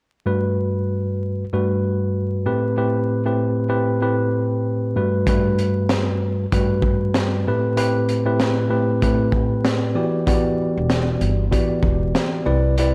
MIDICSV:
0, 0, Header, 1, 4, 480
1, 0, Start_track
1, 0, Tempo, 625000
1, 207, Time_signature, 4, 2, 24, 8
1, 9942, End_track
2, 0, Start_track
2, 0, Title_t, "Tine electric piano"
2, 0, Program_c, 0, 4
2, 198, Note_on_c, 0, 43, 84
2, 200, Note_on_c, 0, 55, 75
2, 201, Note_on_c, 0, 57, 77
2, 203, Note_on_c, 0, 66, 81
2, 206, Note_on_c, 0, 71, 99
2, 1100, Note_off_c, 0, 43, 0
2, 1101, Note_off_c, 0, 55, 0
2, 1102, Note_off_c, 0, 57, 0
2, 1103, Note_off_c, 0, 66, 0
2, 1104, Note_off_c, 0, 71, 0
2, 1172, Note_on_c, 0, 43, 88
2, 1173, Note_on_c, 0, 55, 82
2, 1175, Note_on_c, 0, 57, 78
2, 1177, Note_on_c, 0, 66, 89
2, 1179, Note_on_c, 0, 71, 93
2, 1879, Note_off_c, 0, 57, 0
2, 1883, Note_off_c, 0, 71, 0
2, 1885, Note_on_c, 0, 45, 87
2, 1888, Note_on_c, 0, 57, 82
2, 1889, Note_on_c, 0, 60, 85
2, 1890, Note_off_c, 0, 43, 0
2, 1890, Note_off_c, 0, 55, 0
2, 1891, Note_on_c, 0, 67, 87
2, 1892, Note_off_c, 0, 66, 0
2, 1892, Note_on_c, 0, 71, 99
2, 2111, Note_off_c, 0, 45, 0
2, 2112, Note_off_c, 0, 57, 0
2, 2113, Note_off_c, 0, 60, 0
2, 2113, Note_off_c, 0, 67, 0
2, 2114, Note_off_c, 0, 71, 0
2, 2126, Note_on_c, 0, 45, 89
2, 2129, Note_on_c, 0, 57, 77
2, 2130, Note_on_c, 0, 60, 81
2, 2133, Note_on_c, 0, 67, 84
2, 2134, Note_on_c, 0, 71, 97
2, 2475, Note_off_c, 0, 45, 0
2, 2476, Note_off_c, 0, 57, 0
2, 2477, Note_off_c, 0, 60, 0
2, 2478, Note_off_c, 0, 67, 0
2, 2479, Note_off_c, 0, 71, 0
2, 2499, Note_on_c, 0, 45, 88
2, 2500, Note_on_c, 0, 57, 85
2, 2501, Note_on_c, 0, 60, 85
2, 2503, Note_on_c, 0, 67, 83
2, 2506, Note_on_c, 0, 71, 95
2, 2818, Note_off_c, 0, 45, 0
2, 2819, Note_off_c, 0, 57, 0
2, 2820, Note_off_c, 0, 60, 0
2, 2821, Note_off_c, 0, 67, 0
2, 2822, Note_off_c, 0, 71, 0
2, 2833, Note_on_c, 0, 45, 83
2, 2835, Note_on_c, 0, 57, 75
2, 2835, Note_on_c, 0, 60, 86
2, 2838, Note_on_c, 0, 67, 85
2, 2839, Note_on_c, 0, 71, 105
2, 3064, Note_off_c, 0, 45, 0
2, 3065, Note_off_c, 0, 57, 0
2, 3066, Note_off_c, 0, 60, 0
2, 3067, Note_off_c, 0, 67, 0
2, 3068, Note_off_c, 0, 71, 0
2, 3083, Note_on_c, 0, 45, 89
2, 3085, Note_on_c, 0, 57, 85
2, 3087, Note_on_c, 0, 60, 83
2, 3089, Note_on_c, 0, 67, 82
2, 3090, Note_on_c, 0, 71, 102
2, 3801, Note_off_c, 0, 57, 0
2, 3805, Note_off_c, 0, 45, 0
2, 3805, Note_off_c, 0, 71, 0
2, 3807, Note_off_c, 0, 60, 0
2, 3807, Note_on_c, 0, 43, 84
2, 3808, Note_off_c, 0, 67, 0
2, 3810, Note_on_c, 0, 55, 78
2, 3810, Note_on_c, 0, 57, 77
2, 3813, Note_on_c, 0, 66, 78
2, 3815, Note_on_c, 0, 71, 95
2, 4032, Note_off_c, 0, 43, 0
2, 4033, Note_off_c, 0, 55, 0
2, 4033, Note_off_c, 0, 57, 0
2, 4035, Note_off_c, 0, 66, 0
2, 4035, Note_off_c, 0, 71, 0
2, 4056, Note_on_c, 0, 43, 78
2, 4057, Note_on_c, 0, 55, 77
2, 4059, Note_on_c, 0, 57, 84
2, 4061, Note_on_c, 0, 66, 77
2, 4063, Note_on_c, 0, 71, 99
2, 4949, Note_off_c, 0, 43, 0
2, 4950, Note_off_c, 0, 55, 0
2, 4951, Note_off_c, 0, 57, 0
2, 4952, Note_off_c, 0, 66, 0
2, 4953, Note_off_c, 0, 71, 0
2, 5008, Note_on_c, 0, 43, 89
2, 5011, Note_on_c, 0, 55, 88
2, 5012, Note_on_c, 0, 57, 78
2, 5015, Note_on_c, 0, 66, 89
2, 5016, Note_on_c, 0, 71, 105
2, 5728, Note_off_c, 0, 43, 0
2, 5729, Note_off_c, 0, 55, 0
2, 5730, Note_off_c, 0, 57, 0
2, 5731, Note_off_c, 0, 66, 0
2, 5732, Note_off_c, 0, 71, 0
2, 5738, Note_on_c, 0, 45, 90
2, 5740, Note_on_c, 0, 57, 85
2, 5742, Note_on_c, 0, 60, 79
2, 5744, Note_on_c, 0, 67, 84
2, 5746, Note_on_c, 0, 71, 96
2, 5955, Note_off_c, 0, 45, 0
2, 5958, Note_off_c, 0, 57, 0
2, 5959, Note_off_c, 0, 60, 0
2, 5960, Note_off_c, 0, 67, 0
2, 5961, Note_off_c, 0, 71, 0
2, 5964, Note_on_c, 0, 45, 84
2, 5966, Note_on_c, 0, 57, 74
2, 5968, Note_on_c, 0, 60, 84
2, 5969, Note_on_c, 0, 67, 81
2, 5972, Note_on_c, 0, 71, 103
2, 6314, Note_off_c, 0, 45, 0
2, 6315, Note_off_c, 0, 57, 0
2, 6316, Note_off_c, 0, 60, 0
2, 6316, Note_off_c, 0, 67, 0
2, 6318, Note_off_c, 0, 71, 0
2, 6339, Note_on_c, 0, 45, 101
2, 6340, Note_on_c, 0, 57, 88
2, 6342, Note_on_c, 0, 60, 84
2, 6345, Note_on_c, 0, 67, 82
2, 6346, Note_on_c, 0, 71, 102
2, 6659, Note_off_c, 0, 45, 0
2, 6659, Note_off_c, 0, 57, 0
2, 6660, Note_off_c, 0, 60, 0
2, 6662, Note_off_c, 0, 67, 0
2, 6662, Note_off_c, 0, 71, 0
2, 6677, Note_on_c, 0, 45, 93
2, 6679, Note_on_c, 0, 57, 78
2, 6681, Note_on_c, 0, 60, 80
2, 6684, Note_on_c, 0, 67, 81
2, 6685, Note_on_c, 0, 71, 96
2, 6907, Note_off_c, 0, 45, 0
2, 6908, Note_off_c, 0, 57, 0
2, 6909, Note_off_c, 0, 60, 0
2, 6910, Note_off_c, 0, 67, 0
2, 6911, Note_off_c, 0, 71, 0
2, 6933, Note_on_c, 0, 45, 98
2, 6934, Note_on_c, 0, 57, 91
2, 6937, Note_on_c, 0, 60, 83
2, 6939, Note_on_c, 0, 67, 75
2, 6940, Note_on_c, 0, 71, 105
2, 7636, Note_off_c, 0, 67, 0
2, 7641, Note_on_c, 0, 52, 97
2, 7642, Note_on_c, 0, 59, 75
2, 7644, Note_on_c, 0, 66, 81
2, 7645, Note_on_c, 0, 67, 87
2, 7648, Note_on_c, 0, 74, 87
2, 7650, Note_off_c, 0, 45, 0
2, 7651, Note_off_c, 0, 57, 0
2, 7652, Note_off_c, 0, 60, 0
2, 7654, Note_off_c, 0, 71, 0
2, 7869, Note_off_c, 0, 52, 0
2, 7869, Note_off_c, 0, 59, 0
2, 7870, Note_off_c, 0, 66, 0
2, 7871, Note_off_c, 0, 67, 0
2, 7872, Note_off_c, 0, 74, 0
2, 7882, Note_on_c, 0, 52, 83
2, 7885, Note_on_c, 0, 59, 87
2, 7887, Note_on_c, 0, 66, 79
2, 7888, Note_on_c, 0, 67, 79
2, 7891, Note_on_c, 0, 74, 102
2, 8782, Note_off_c, 0, 52, 0
2, 8784, Note_off_c, 0, 59, 0
2, 8785, Note_off_c, 0, 66, 0
2, 8785, Note_off_c, 0, 67, 0
2, 8787, Note_off_c, 0, 74, 0
2, 8842, Note_on_c, 0, 52, 93
2, 8845, Note_on_c, 0, 59, 79
2, 8846, Note_on_c, 0, 66, 86
2, 8848, Note_on_c, 0, 67, 80
2, 8850, Note_on_c, 0, 74, 102
2, 9562, Note_off_c, 0, 74, 0
2, 9565, Note_off_c, 0, 52, 0
2, 9565, Note_on_c, 0, 48, 92
2, 9566, Note_off_c, 0, 59, 0
2, 9567, Note_off_c, 0, 66, 0
2, 9568, Note_off_c, 0, 67, 0
2, 9568, Note_on_c, 0, 60, 75
2, 9568, Note_on_c, 0, 64, 84
2, 9571, Note_on_c, 0, 71, 84
2, 9571, Note_on_c, 0, 74, 101
2, 9791, Note_off_c, 0, 48, 0
2, 9792, Note_off_c, 0, 60, 0
2, 9792, Note_off_c, 0, 64, 0
2, 9793, Note_off_c, 0, 71, 0
2, 9794, Note_off_c, 0, 74, 0
2, 9821, Note_on_c, 0, 48, 89
2, 9824, Note_on_c, 0, 60, 80
2, 9825, Note_on_c, 0, 64, 83
2, 9826, Note_on_c, 0, 71, 75
2, 9829, Note_on_c, 0, 74, 105
2, 9942, Note_off_c, 0, 48, 0
2, 9942, Note_off_c, 0, 60, 0
2, 9942, Note_off_c, 0, 64, 0
2, 9942, Note_off_c, 0, 71, 0
2, 9942, Note_off_c, 0, 74, 0
2, 9942, End_track
3, 0, Start_track
3, 0, Title_t, "Upright bass"
3, 0, Program_c, 1, 32
3, 8275, Note_on_c, 1, 28, 88
3, 8582, Note_off_c, 1, 28, 0
3, 8611, Note_on_c, 1, 31, 95
3, 8829, Note_off_c, 1, 31, 0
3, 9084, Note_on_c, 1, 28, 84
3, 9306, Note_off_c, 1, 28, 0
3, 9571, Note_on_c, 1, 36, 100
3, 9942, Note_off_c, 1, 36, 0
3, 9942, End_track
4, 0, Start_track
4, 0, Title_t, "Drums"
4, 4046, Note_on_c, 9, 36, 109
4, 4049, Note_on_c, 9, 42, 91
4, 4122, Note_off_c, 9, 36, 0
4, 4126, Note_off_c, 9, 42, 0
4, 4290, Note_on_c, 9, 42, 54
4, 4367, Note_off_c, 9, 42, 0
4, 4526, Note_on_c, 9, 38, 106
4, 4530, Note_on_c, 9, 42, 80
4, 4603, Note_off_c, 9, 38, 0
4, 4607, Note_off_c, 9, 42, 0
4, 5009, Note_on_c, 9, 36, 94
4, 5009, Note_on_c, 9, 42, 91
4, 5086, Note_off_c, 9, 36, 0
4, 5086, Note_off_c, 9, 42, 0
4, 5240, Note_on_c, 9, 36, 95
4, 5317, Note_off_c, 9, 36, 0
4, 5487, Note_on_c, 9, 38, 114
4, 5493, Note_on_c, 9, 42, 76
4, 5563, Note_off_c, 9, 38, 0
4, 5569, Note_off_c, 9, 42, 0
4, 5970, Note_on_c, 9, 42, 94
4, 6047, Note_off_c, 9, 42, 0
4, 6211, Note_on_c, 9, 42, 56
4, 6288, Note_off_c, 9, 42, 0
4, 6448, Note_on_c, 9, 38, 103
4, 6452, Note_on_c, 9, 42, 77
4, 6525, Note_off_c, 9, 38, 0
4, 6528, Note_off_c, 9, 42, 0
4, 6930, Note_on_c, 9, 36, 94
4, 6930, Note_on_c, 9, 42, 90
4, 7007, Note_off_c, 9, 36, 0
4, 7007, Note_off_c, 9, 42, 0
4, 7160, Note_on_c, 9, 36, 91
4, 7237, Note_off_c, 9, 36, 0
4, 7408, Note_on_c, 9, 38, 115
4, 7414, Note_on_c, 9, 42, 78
4, 7485, Note_off_c, 9, 38, 0
4, 7491, Note_off_c, 9, 42, 0
4, 7887, Note_on_c, 9, 36, 111
4, 7892, Note_on_c, 9, 42, 88
4, 7964, Note_off_c, 9, 36, 0
4, 7969, Note_off_c, 9, 42, 0
4, 8369, Note_on_c, 9, 38, 104
4, 8373, Note_on_c, 9, 42, 79
4, 8446, Note_off_c, 9, 38, 0
4, 8450, Note_off_c, 9, 42, 0
4, 8610, Note_on_c, 9, 42, 61
4, 8687, Note_off_c, 9, 42, 0
4, 8852, Note_on_c, 9, 36, 91
4, 8852, Note_on_c, 9, 42, 93
4, 8928, Note_off_c, 9, 36, 0
4, 8929, Note_off_c, 9, 42, 0
4, 9082, Note_on_c, 9, 36, 95
4, 9159, Note_off_c, 9, 36, 0
4, 9330, Note_on_c, 9, 38, 116
4, 9336, Note_on_c, 9, 42, 76
4, 9407, Note_off_c, 9, 38, 0
4, 9413, Note_off_c, 9, 42, 0
4, 9814, Note_on_c, 9, 42, 92
4, 9890, Note_off_c, 9, 42, 0
4, 9942, End_track
0, 0, End_of_file